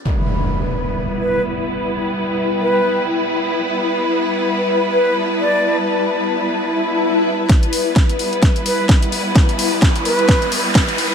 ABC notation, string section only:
X:1
M:4/4
L:1/8
Q:"Swing 16ths" 1/4=129
K:Em
V:1 name="String section"
[G,B,EB]8- | [G,B,EB]8- | [G,B,EB]8- | [G,B,EB]8 |
[G,B,EB]8- | [G,B,EB]8 |]